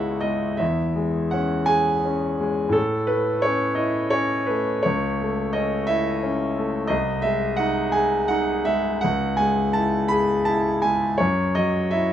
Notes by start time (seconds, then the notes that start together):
Already playing: C#2 G#3 E4 G#4 C#5 D#5 E5 F#5
0.21 G#3 D#5
0.57 E2 E5
0.96 G#3
1.31 C#4 F#5
1.66 G#4 G#5
2.05 C#4
2.40 G#3
2.69 A2 A4
3.07 A3 B4
3.42 C#4 C#5
3.75 E4 D#5
4.10 C#4 C#5
4.47 A3 B4
4.83 C#2 C#5
5.21 A3
5.53 C#4 D#5
5.87 E4 E5
6.23 C#4
6.58 A3
6.87 C2 D#5
7.22 G#3 E5
7.57 D#4 F#5
7.92 G#4 G#5
8.28 D#4 F#5
8.65 G#3 E5
9.01 C#2 F#5
9.37 G#3 G#5
9.73 E4 A5
10.08 G#4 B5
10.45 E4 A5
10.82 G#3 G#5
11.18 F#2 C#5
11.55 F#3 D#5
11.91 E4 E5